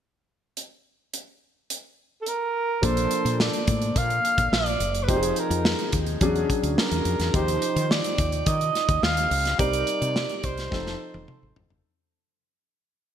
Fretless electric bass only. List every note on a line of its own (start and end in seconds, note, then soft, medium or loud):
2.83 3.06 A#1 medium
3.25 3.48 A#2 medium
3.68 3.91 A2 medium
3.96 4.19 A#2 medium
4.38 4.49 A#1 medium
4.52 4.75 A#1 medium
4.80 5.09 F#1 medium
5.09 5.32 F1 medium
5.50 5.74 F2 medium
5.93 6.16 D#2 medium
6.21 6.44 E2 medium
6.63 6.75 D2 medium
6.91 7.03 E2 medium
7.05 7.17 F2 medium
7.20 7.31 E2 medium
7.34 7.57 D#2 medium
7.76 7.99 D#3 medium
8.18 8.41 D#2 medium
8.46 8.69 D#3 medium
8.89 9.00 D#2 medium
9.03 9.26 D#2 medium
9.31 9.54 C#2 medium
9.59 9.82 C2 medium
10.02 10.25 C3 medium
10.44 10.67 C2 medium
10.72 10.95 F1 medium
11.14 11.26 F1 medium
11.43 11.54 G#1 medium
11.57 11.68 G1 medium
11.71 11.82 F#1 medium